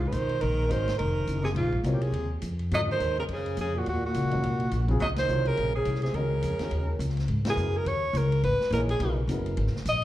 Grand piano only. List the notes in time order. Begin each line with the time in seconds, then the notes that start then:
0.69 D#3 G#3 C#4 F#4 A#4
1.84 F#3 C4 F4 A#4 C#5
2.71 D3 G3 C4 F4 A4
2.87 D#3 G#3 C#4 F#4 A#4
4.30 D#3 G#3 C#4 F#4 A#4
4.88 C#3 F#3 C4 F4 G#4
5.28 C3 F#3 F4 A#4 C#5
6.15 D#3 G#3 C#4 F#4 A#4
6.59 D#3 G#3 C#4 F#4 A#4
7.45 C#3 F#3 B3 E4 A#4
8.72 E3 A#3 D#4 G#4 C#5
9.01 C#3 F#3 B3 E4 A#4
9.29 C#3 F#3 B3 E4 A#4